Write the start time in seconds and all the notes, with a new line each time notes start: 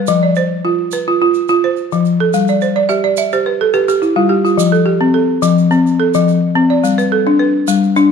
Already playing: B4
0.07 F3, shaker
0.23 D5
0.35 C5, shaker
0.65 F4
0.92 B4, shaker
1.08 F4
1.22 F4
1.34 shaker
1.48 F4, shaker
1.64 C5
1.77 shaker
1.92 F3, shaker
2.05 shaker
2.20 A4
2.34 G3, shaker
2.48 D5, shaker
2.61 C5, shaker
2.76 D5
2.89 G4 E5, shaker
3.04 D5
3.17 E5, shaker
3.32 G4 C5, shaker
3.46 B4
3.61 A4
3.74 G4 B4, shaker
3.88 G4, shaker
4.02 E4, shaker
4.16 G3 F4
4.29 G4
4.45 F4, shaker
4.57 F3, shaker
4.72 A4, shaker
4.86 G4
5.01 C4
5.14 A4
5.42 F3, shaker
5.58 shaker
5.71 C4, shaker
5.87 shaker
6.00 A4
6.14 F3, shaker
6.28 shaker
6.55 C4
6.70 D5
6.84 G3, shaker
6.98 B4, shaker
7.12 A4
7.27 D4
7.39 B4
7.68 G3, shaker
7.83 shaker
7.96 D4, shaker